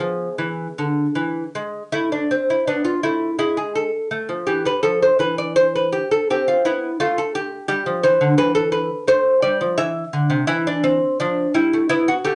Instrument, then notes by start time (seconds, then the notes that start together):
lute
Already playing: B3 G#4
0.00 F3
0.38 E3
0.78 D3
1.15 E3
1.55 G#3
1.92 A3 E4
2.12 D4
2.31 C4
2.50 E4
2.67 B3 D4
2.85 F4
3.03 A3 E4
3.39 G#3 E4
3.57 G#4
3.75 A4
4.11 A3
4.29 F3
4.47 E3 G4
4.65 G3 B4
4.83 F3 A4
5.02 C5
5.19 E3 B4
5.38 D5
5.56 C5
5.75 B4
5.92 G4
6.11 A4
6.30 C4 G4
6.48 F4
6.65 B3 E4
7.00 A3 F4
7.18 A4
7.35 G4
7.68 G3 G4
7.86 F3
8.03 E3 C5
8.21 D3
8.38 E3 B4
8.55 A4
8.72 B4
9.07 A3 C5
9.42 G3 D5
9.61 F3
9.78 E3 E5
10.13 D3
10.30 C3
10.47 E3 E4
10.67 D4
10.84 C4
11.20 F3 D4
11.54 G3 E4
11.73 A3
11.89 B3 E4
12.08 F#4
12.25 A3 G4